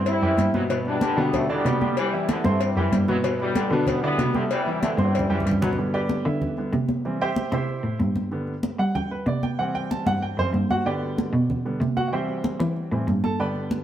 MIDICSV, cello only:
0, 0, Header, 1, 2, 480
1, 0, Start_track
1, 0, Key_signature, 1, "major"
1, 0, Tempo, 317460
1, 1064, Time_signature, 4, 2, 24, 8
1, 20925, End_track
2, 0, Start_track
2, 0, Title_t, "Cello"
2, 0, Program_c, 0, 42
2, 0, Note_on_c, 0, 43, 92
2, 307, Note_off_c, 0, 43, 0
2, 329, Note_on_c, 0, 42, 75
2, 560, Note_off_c, 0, 42, 0
2, 567, Note_on_c, 0, 43, 93
2, 1692, Note_off_c, 0, 43, 0
2, 1772, Note_on_c, 0, 50, 94
2, 2447, Note_off_c, 0, 50, 0
2, 2495, Note_on_c, 0, 48, 88
2, 3614, Note_off_c, 0, 48, 0
2, 3694, Note_on_c, 0, 43, 104
2, 4144, Note_off_c, 0, 43, 0
2, 4173, Note_on_c, 0, 42, 77
2, 4396, Note_off_c, 0, 42, 0
2, 4405, Note_on_c, 0, 43, 89
2, 5526, Note_off_c, 0, 43, 0
2, 5608, Note_on_c, 0, 50, 93
2, 6281, Note_off_c, 0, 50, 0
2, 6326, Note_on_c, 0, 48, 94
2, 7445, Note_off_c, 0, 48, 0
2, 7528, Note_on_c, 0, 43, 101
2, 7977, Note_off_c, 0, 43, 0
2, 8012, Note_on_c, 0, 42, 76
2, 8236, Note_off_c, 0, 42, 0
2, 8251, Note_on_c, 0, 43, 92
2, 9367, Note_off_c, 0, 43, 0
2, 9461, Note_on_c, 0, 50, 95
2, 10126, Note_off_c, 0, 50, 0
2, 10174, Note_on_c, 0, 48, 93
2, 11289, Note_off_c, 0, 48, 0
2, 11374, Note_on_c, 0, 48, 93
2, 11820, Note_off_c, 0, 48, 0
2, 11847, Note_on_c, 0, 45, 70
2, 12073, Note_off_c, 0, 45, 0
2, 12096, Note_on_c, 0, 43, 89
2, 13211, Note_off_c, 0, 43, 0
2, 13288, Note_on_c, 0, 55, 96
2, 13961, Note_off_c, 0, 55, 0
2, 14011, Note_on_c, 0, 48, 92
2, 15129, Note_off_c, 0, 48, 0
2, 15209, Note_on_c, 0, 43, 86
2, 15659, Note_off_c, 0, 43, 0
2, 15689, Note_on_c, 0, 42, 70
2, 15915, Note_off_c, 0, 42, 0
2, 15925, Note_on_c, 0, 43, 86
2, 17047, Note_off_c, 0, 43, 0
2, 17130, Note_on_c, 0, 47, 94
2, 17804, Note_off_c, 0, 47, 0
2, 17847, Note_on_c, 0, 48, 92
2, 18970, Note_off_c, 0, 48, 0
2, 19052, Note_on_c, 0, 52, 95
2, 19503, Note_off_c, 0, 52, 0
2, 19533, Note_on_c, 0, 45, 75
2, 19760, Note_off_c, 0, 45, 0
2, 19774, Note_on_c, 0, 43, 89
2, 20895, Note_off_c, 0, 43, 0
2, 20925, End_track
0, 0, End_of_file